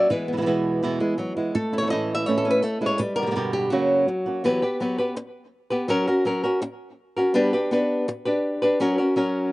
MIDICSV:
0, 0, Header, 1, 4, 480
1, 0, Start_track
1, 0, Tempo, 362757
1, 132, Time_signature, 4, 2, 24, 8
1, 12600, End_track
2, 0, Start_track
2, 0, Title_t, "Nylon-string guitar"
2, 0, Program_c, 0, 24
2, 0, Note_on_c, 0, 74, 84
2, 0, Note_on_c, 0, 76, 111
2, 130, Note_on_c, 0, 52, 68
2, 137, Note_on_c, 0, 56, 46
2, 142, Note_off_c, 0, 74, 0
2, 144, Note_off_c, 0, 76, 0
2, 144, Note_on_c, 0, 71, 84
2, 151, Note_on_c, 0, 59, 43
2, 159, Note_on_c, 0, 64, 43
2, 356, Note_off_c, 0, 59, 0
2, 372, Note_on_c, 0, 59, 50
2, 1079, Note_off_c, 0, 59, 0
2, 1095, Note_on_c, 0, 59, 46
2, 1311, Note_off_c, 0, 56, 0
2, 1327, Note_on_c, 0, 56, 64
2, 1554, Note_off_c, 0, 56, 0
2, 1559, Note_on_c, 0, 54, 68
2, 1803, Note_off_c, 0, 54, 0
2, 1808, Note_on_c, 0, 56, 59
2, 2019, Note_off_c, 0, 52, 0
2, 2033, Note_off_c, 0, 64, 0
2, 2047, Note_on_c, 0, 57, 65
2, 2048, Note_off_c, 0, 56, 0
2, 2048, Note_on_c, 0, 69, 97
2, 2051, Note_off_c, 0, 59, 0
2, 2055, Note_off_c, 0, 71, 0
2, 2293, Note_on_c, 0, 64, 52
2, 2356, Note_on_c, 0, 73, 91
2, 2513, Note_off_c, 0, 73, 0
2, 2518, Note_on_c, 0, 75, 99
2, 2835, Note_off_c, 0, 75, 0
2, 2840, Note_on_c, 0, 76, 107
2, 2846, Note_off_c, 0, 69, 0
2, 2992, Note_off_c, 0, 76, 0
2, 2992, Note_on_c, 0, 73, 112
2, 3144, Note_on_c, 0, 69, 89
2, 3241, Note_on_c, 0, 61, 66
2, 3310, Note_off_c, 0, 69, 0
2, 3315, Note_on_c, 0, 71, 93
2, 3469, Note_off_c, 0, 57, 0
2, 3472, Note_off_c, 0, 71, 0
2, 3472, Note_on_c, 0, 69, 96
2, 3479, Note_off_c, 0, 61, 0
2, 3484, Note_on_c, 0, 57, 60
2, 3639, Note_off_c, 0, 73, 0
2, 3720, Note_off_c, 0, 57, 0
2, 3725, Note_on_c, 0, 56, 64
2, 3786, Note_on_c, 0, 73, 89
2, 3939, Note_off_c, 0, 64, 0
2, 3943, Note_off_c, 0, 69, 0
2, 3943, Note_on_c, 0, 71, 96
2, 3956, Note_off_c, 0, 73, 0
2, 3965, Note_off_c, 0, 56, 0
2, 3965, Note_on_c, 0, 55, 68
2, 4174, Note_off_c, 0, 71, 0
2, 4179, Note_on_c, 0, 70, 91
2, 4668, Note_off_c, 0, 70, 0
2, 4674, Note_on_c, 0, 67, 98
2, 4896, Note_off_c, 0, 55, 0
2, 4899, Note_on_c, 0, 66, 80
2, 4919, Note_off_c, 0, 67, 0
2, 4928, Note_on_c, 0, 54, 74
2, 5865, Note_off_c, 0, 54, 0
2, 5872, Note_off_c, 0, 66, 0
2, 5874, Note_on_c, 0, 52, 72
2, 5881, Note_on_c, 0, 54, 70
2, 5885, Note_on_c, 0, 59, 74
2, 5892, Note_on_c, 0, 67, 77
2, 5896, Note_on_c, 0, 71, 84
2, 6100, Note_off_c, 0, 71, 0
2, 6110, Note_off_c, 0, 52, 0
2, 6112, Note_off_c, 0, 67, 0
2, 6113, Note_off_c, 0, 54, 0
2, 6115, Note_off_c, 0, 59, 0
2, 6116, Note_on_c, 0, 71, 50
2, 6128, Note_on_c, 0, 67, 45
2, 6136, Note_on_c, 0, 59, 41
2, 6348, Note_off_c, 0, 59, 0
2, 6351, Note_off_c, 0, 71, 0
2, 6355, Note_on_c, 0, 54, 59
2, 6357, Note_off_c, 0, 67, 0
2, 6364, Note_on_c, 0, 59, 59
2, 6372, Note_on_c, 0, 67, 57
2, 6379, Note_on_c, 0, 71, 60
2, 6579, Note_off_c, 0, 71, 0
2, 6590, Note_off_c, 0, 54, 0
2, 6592, Note_off_c, 0, 67, 0
2, 6595, Note_off_c, 0, 59, 0
2, 6595, Note_on_c, 0, 71, 55
2, 6608, Note_on_c, 0, 67, 45
2, 6615, Note_on_c, 0, 59, 45
2, 6822, Note_off_c, 0, 59, 0
2, 6825, Note_off_c, 0, 67, 0
2, 6827, Note_off_c, 0, 71, 0
2, 7547, Note_on_c, 0, 71, 58
2, 7560, Note_on_c, 0, 67, 54
2, 7568, Note_on_c, 0, 59, 50
2, 7784, Note_on_c, 0, 54, 78
2, 7787, Note_off_c, 0, 71, 0
2, 7791, Note_off_c, 0, 59, 0
2, 7793, Note_off_c, 0, 67, 0
2, 7796, Note_on_c, 0, 61, 77
2, 7799, Note_on_c, 0, 66, 81
2, 7809, Note_on_c, 0, 70, 94
2, 8023, Note_off_c, 0, 70, 0
2, 8025, Note_off_c, 0, 54, 0
2, 8031, Note_off_c, 0, 61, 0
2, 8033, Note_off_c, 0, 66, 0
2, 8039, Note_on_c, 0, 70, 54
2, 8049, Note_on_c, 0, 66, 49
2, 8055, Note_on_c, 0, 61, 42
2, 8265, Note_off_c, 0, 61, 0
2, 8270, Note_off_c, 0, 66, 0
2, 8271, Note_on_c, 0, 54, 59
2, 8273, Note_off_c, 0, 70, 0
2, 8281, Note_on_c, 0, 61, 59
2, 8285, Note_on_c, 0, 66, 66
2, 8294, Note_on_c, 0, 70, 70
2, 8500, Note_off_c, 0, 70, 0
2, 8509, Note_off_c, 0, 54, 0
2, 8510, Note_off_c, 0, 66, 0
2, 8514, Note_off_c, 0, 61, 0
2, 8516, Note_on_c, 0, 70, 55
2, 8526, Note_on_c, 0, 66, 46
2, 8539, Note_on_c, 0, 61, 48
2, 8744, Note_off_c, 0, 61, 0
2, 8747, Note_off_c, 0, 66, 0
2, 8752, Note_off_c, 0, 70, 0
2, 9481, Note_on_c, 0, 70, 55
2, 9494, Note_on_c, 0, 66, 56
2, 9509, Note_on_c, 0, 61, 47
2, 9712, Note_on_c, 0, 55, 82
2, 9715, Note_off_c, 0, 70, 0
2, 9718, Note_on_c, 0, 59, 81
2, 9719, Note_off_c, 0, 61, 0
2, 9721, Note_off_c, 0, 66, 0
2, 9725, Note_on_c, 0, 62, 89
2, 9733, Note_on_c, 0, 67, 93
2, 9734, Note_on_c, 0, 71, 85
2, 9948, Note_off_c, 0, 71, 0
2, 9950, Note_off_c, 0, 55, 0
2, 9954, Note_off_c, 0, 59, 0
2, 9957, Note_off_c, 0, 62, 0
2, 9961, Note_off_c, 0, 67, 0
2, 9964, Note_on_c, 0, 71, 54
2, 9975, Note_on_c, 0, 67, 49
2, 9983, Note_on_c, 0, 62, 41
2, 10196, Note_off_c, 0, 71, 0
2, 10200, Note_off_c, 0, 62, 0
2, 10202, Note_off_c, 0, 67, 0
2, 10204, Note_on_c, 0, 59, 60
2, 10215, Note_on_c, 0, 62, 63
2, 10222, Note_on_c, 0, 67, 64
2, 10229, Note_on_c, 0, 71, 68
2, 10677, Note_off_c, 0, 59, 0
2, 10683, Note_off_c, 0, 62, 0
2, 10686, Note_off_c, 0, 67, 0
2, 10686, Note_off_c, 0, 71, 0
2, 10922, Note_on_c, 0, 71, 55
2, 10933, Note_on_c, 0, 67, 55
2, 10943, Note_on_c, 0, 62, 52
2, 11390, Note_off_c, 0, 71, 0
2, 11401, Note_off_c, 0, 67, 0
2, 11406, Note_on_c, 0, 71, 66
2, 11407, Note_off_c, 0, 62, 0
2, 11419, Note_on_c, 0, 67, 51
2, 11429, Note_on_c, 0, 62, 46
2, 11638, Note_off_c, 0, 71, 0
2, 11643, Note_on_c, 0, 54, 77
2, 11645, Note_off_c, 0, 62, 0
2, 11645, Note_off_c, 0, 67, 0
2, 11651, Note_on_c, 0, 61, 81
2, 11662, Note_on_c, 0, 66, 74
2, 11664, Note_on_c, 0, 70, 78
2, 11867, Note_off_c, 0, 70, 0
2, 11877, Note_off_c, 0, 54, 0
2, 11880, Note_off_c, 0, 61, 0
2, 11883, Note_on_c, 0, 70, 46
2, 11886, Note_off_c, 0, 66, 0
2, 11900, Note_on_c, 0, 66, 46
2, 11905, Note_on_c, 0, 61, 42
2, 12114, Note_off_c, 0, 61, 0
2, 12116, Note_off_c, 0, 66, 0
2, 12117, Note_off_c, 0, 70, 0
2, 12120, Note_on_c, 0, 54, 52
2, 12130, Note_on_c, 0, 61, 61
2, 12131, Note_on_c, 0, 66, 61
2, 12140, Note_on_c, 0, 70, 63
2, 12585, Note_off_c, 0, 54, 0
2, 12587, Note_off_c, 0, 61, 0
2, 12591, Note_off_c, 0, 66, 0
2, 12595, Note_off_c, 0, 70, 0
2, 12600, End_track
3, 0, Start_track
3, 0, Title_t, "Nylon-string guitar"
3, 0, Program_c, 1, 24
3, 0, Note_on_c, 1, 54, 34
3, 135, Note_off_c, 1, 54, 0
3, 432, Note_on_c, 1, 47, 38
3, 436, Note_on_c, 1, 52, 39
3, 443, Note_on_c, 1, 56, 44
3, 444, Note_on_c, 1, 59, 44
3, 445, Note_on_c, 1, 64, 45
3, 474, Note_off_c, 1, 47, 0
3, 481, Note_off_c, 1, 52, 0
3, 483, Note_off_c, 1, 56, 0
3, 488, Note_off_c, 1, 59, 0
3, 490, Note_off_c, 1, 64, 0
3, 490, Note_on_c, 1, 47, 51
3, 497, Note_on_c, 1, 52, 53
3, 499, Note_on_c, 1, 56, 53
3, 504, Note_on_c, 1, 59, 47
3, 506, Note_on_c, 1, 64, 61
3, 535, Note_off_c, 1, 47, 0
3, 538, Note_off_c, 1, 52, 0
3, 544, Note_off_c, 1, 56, 0
3, 546, Note_off_c, 1, 59, 0
3, 549, Note_off_c, 1, 64, 0
3, 550, Note_on_c, 1, 47, 55
3, 553, Note_on_c, 1, 52, 59
3, 560, Note_on_c, 1, 56, 64
3, 562, Note_on_c, 1, 59, 64
3, 565, Note_on_c, 1, 64, 57
3, 598, Note_off_c, 1, 47, 0
3, 601, Note_off_c, 1, 52, 0
3, 604, Note_off_c, 1, 56, 0
3, 606, Note_off_c, 1, 59, 0
3, 609, Note_off_c, 1, 64, 0
3, 609, Note_on_c, 1, 40, 68
3, 614, Note_on_c, 1, 47, 66
3, 617, Note_on_c, 1, 52, 58
3, 620, Note_on_c, 1, 56, 68
3, 622, Note_on_c, 1, 59, 69
3, 624, Note_on_c, 1, 64, 67
3, 1075, Note_off_c, 1, 40, 0
3, 1078, Note_off_c, 1, 47, 0
3, 1084, Note_off_c, 1, 52, 0
3, 1085, Note_off_c, 1, 56, 0
3, 1086, Note_off_c, 1, 59, 0
3, 1087, Note_off_c, 1, 64, 0
3, 1091, Note_on_c, 1, 40, 63
3, 1094, Note_on_c, 1, 47, 75
3, 1101, Note_on_c, 1, 52, 77
3, 1107, Note_on_c, 1, 56, 79
3, 1113, Note_on_c, 1, 59, 69
3, 1115, Note_on_c, 1, 64, 76
3, 1312, Note_off_c, 1, 64, 0
3, 1321, Note_off_c, 1, 40, 0
3, 1321, Note_off_c, 1, 59, 0
3, 1322, Note_off_c, 1, 47, 0
3, 1326, Note_off_c, 1, 52, 0
3, 1328, Note_on_c, 1, 64, 44
3, 1329, Note_off_c, 1, 56, 0
3, 1337, Note_on_c, 1, 59, 43
3, 1345, Note_on_c, 1, 56, 46
3, 1352, Note_on_c, 1, 52, 37
3, 1559, Note_off_c, 1, 64, 0
3, 1561, Note_off_c, 1, 52, 0
3, 1563, Note_off_c, 1, 56, 0
3, 1563, Note_off_c, 1, 59, 0
3, 1804, Note_on_c, 1, 64, 42
3, 1816, Note_on_c, 1, 59, 36
3, 1822, Note_on_c, 1, 56, 37
3, 1832, Note_on_c, 1, 52, 36
3, 2037, Note_off_c, 1, 64, 0
3, 2043, Note_off_c, 1, 59, 0
3, 2046, Note_off_c, 1, 56, 0
3, 2051, Note_off_c, 1, 52, 0
3, 2282, Note_on_c, 1, 64, 44
3, 2296, Note_on_c, 1, 61, 34
3, 2306, Note_on_c, 1, 57, 34
3, 2402, Note_off_c, 1, 57, 0
3, 2405, Note_off_c, 1, 61, 0
3, 2410, Note_on_c, 1, 52, 46
3, 2411, Note_off_c, 1, 64, 0
3, 2418, Note_on_c, 1, 57, 44
3, 2420, Note_on_c, 1, 61, 46
3, 2427, Note_on_c, 1, 64, 45
3, 2455, Note_off_c, 1, 52, 0
3, 2461, Note_off_c, 1, 57, 0
3, 2466, Note_off_c, 1, 61, 0
3, 2470, Note_off_c, 1, 64, 0
3, 2471, Note_on_c, 1, 52, 47
3, 2477, Note_on_c, 1, 57, 55
3, 2482, Note_on_c, 1, 61, 64
3, 2486, Note_on_c, 1, 64, 51
3, 2517, Note_off_c, 1, 52, 0
3, 2523, Note_off_c, 1, 57, 0
3, 2525, Note_off_c, 1, 61, 0
3, 2530, Note_on_c, 1, 45, 67
3, 2531, Note_off_c, 1, 64, 0
3, 2533, Note_on_c, 1, 52, 72
3, 2539, Note_on_c, 1, 57, 68
3, 2541, Note_on_c, 1, 61, 70
3, 2547, Note_on_c, 1, 64, 74
3, 2988, Note_off_c, 1, 45, 0
3, 2995, Note_off_c, 1, 52, 0
3, 3003, Note_off_c, 1, 57, 0
3, 3004, Note_off_c, 1, 61, 0
3, 3004, Note_on_c, 1, 45, 74
3, 3007, Note_off_c, 1, 64, 0
3, 3011, Note_on_c, 1, 52, 67
3, 3017, Note_on_c, 1, 57, 81
3, 3024, Note_on_c, 1, 61, 76
3, 3031, Note_on_c, 1, 64, 67
3, 3465, Note_off_c, 1, 45, 0
3, 3470, Note_off_c, 1, 52, 0
3, 3474, Note_off_c, 1, 57, 0
3, 3475, Note_off_c, 1, 61, 0
3, 3479, Note_off_c, 1, 64, 0
3, 3715, Note_on_c, 1, 64, 45
3, 3728, Note_on_c, 1, 61, 38
3, 3738, Note_on_c, 1, 57, 40
3, 3951, Note_off_c, 1, 64, 0
3, 3957, Note_off_c, 1, 61, 0
3, 3962, Note_off_c, 1, 57, 0
3, 4195, Note_on_c, 1, 67, 49
3, 4204, Note_on_c, 1, 59, 40
3, 4214, Note_on_c, 1, 55, 36
3, 4218, Note_on_c, 1, 50, 39
3, 4247, Note_off_c, 1, 50, 0
3, 4252, Note_off_c, 1, 55, 0
3, 4257, Note_off_c, 1, 59, 0
3, 4260, Note_off_c, 1, 67, 0
3, 4260, Note_on_c, 1, 47, 46
3, 4262, Note_on_c, 1, 50, 44
3, 4268, Note_on_c, 1, 55, 47
3, 4273, Note_on_c, 1, 59, 46
3, 4276, Note_on_c, 1, 67, 52
3, 4303, Note_off_c, 1, 47, 0
3, 4309, Note_off_c, 1, 50, 0
3, 4311, Note_off_c, 1, 55, 0
3, 4316, Note_off_c, 1, 59, 0
3, 4318, Note_off_c, 1, 67, 0
3, 4319, Note_on_c, 1, 47, 55
3, 4325, Note_on_c, 1, 50, 57
3, 4327, Note_on_c, 1, 55, 49
3, 4332, Note_on_c, 1, 59, 57
3, 4334, Note_on_c, 1, 67, 64
3, 4363, Note_off_c, 1, 47, 0
3, 4369, Note_off_c, 1, 50, 0
3, 4372, Note_off_c, 1, 55, 0
3, 4375, Note_off_c, 1, 59, 0
3, 4376, Note_off_c, 1, 67, 0
3, 4379, Note_on_c, 1, 47, 61
3, 4385, Note_on_c, 1, 50, 61
3, 4388, Note_on_c, 1, 55, 58
3, 4391, Note_on_c, 1, 59, 63
3, 4392, Note_on_c, 1, 67, 69
3, 4426, Note_off_c, 1, 47, 0
3, 4430, Note_off_c, 1, 50, 0
3, 4434, Note_off_c, 1, 55, 0
3, 4435, Note_off_c, 1, 59, 0
3, 4438, Note_off_c, 1, 67, 0
3, 4439, Note_on_c, 1, 43, 72
3, 4441, Note_on_c, 1, 47, 72
3, 4445, Note_on_c, 1, 50, 72
3, 4450, Note_on_c, 1, 55, 77
3, 4451, Note_on_c, 1, 59, 71
3, 4454, Note_on_c, 1, 67, 79
3, 4904, Note_off_c, 1, 43, 0
3, 4909, Note_on_c, 1, 42, 60
3, 4912, Note_off_c, 1, 47, 0
3, 4915, Note_off_c, 1, 50, 0
3, 4917, Note_on_c, 1, 49, 67
3, 4918, Note_off_c, 1, 55, 0
3, 4918, Note_off_c, 1, 59, 0
3, 4920, Note_off_c, 1, 67, 0
3, 4922, Note_on_c, 1, 54, 65
3, 4927, Note_on_c, 1, 58, 66
3, 4931, Note_on_c, 1, 61, 79
3, 4937, Note_on_c, 1, 66, 81
3, 5382, Note_off_c, 1, 42, 0
3, 5385, Note_off_c, 1, 49, 0
3, 5388, Note_off_c, 1, 54, 0
3, 5390, Note_off_c, 1, 58, 0
3, 5393, Note_off_c, 1, 61, 0
3, 5395, Note_off_c, 1, 66, 0
3, 5635, Note_on_c, 1, 66, 50
3, 5645, Note_on_c, 1, 61, 39
3, 5652, Note_on_c, 1, 58, 42
3, 5659, Note_on_c, 1, 54, 35
3, 5870, Note_off_c, 1, 66, 0
3, 5875, Note_off_c, 1, 61, 0
3, 5879, Note_off_c, 1, 58, 0
3, 5882, Note_off_c, 1, 54, 0
3, 12600, End_track
4, 0, Start_track
4, 0, Title_t, "Muted nylon-string guitar strokes"
4, 137, Note_on_c, 9, 29, 53
4, 269, Note_off_c, 9, 29, 0
4, 1572, Note_on_c, 9, 29, 59
4, 1704, Note_off_c, 9, 29, 0
4, 2052, Note_on_c, 9, 29, 61
4, 2184, Note_off_c, 9, 29, 0
4, 3481, Note_on_c, 9, 29, 52
4, 3613, Note_off_c, 9, 29, 0
4, 3962, Note_on_c, 9, 29, 53
4, 4094, Note_off_c, 9, 29, 0
4, 5398, Note_on_c, 9, 29, 51
4, 5530, Note_off_c, 9, 29, 0
4, 6834, Note_on_c, 9, 29, 70
4, 6966, Note_off_c, 9, 29, 0
4, 8754, Note_on_c, 9, 29, 73
4, 8886, Note_off_c, 9, 29, 0
4, 10691, Note_on_c, 9, 29, 67
4, 10824, Note_off_c, 9, 29, 0
4, 12600, End_track
0, 0, End_of_file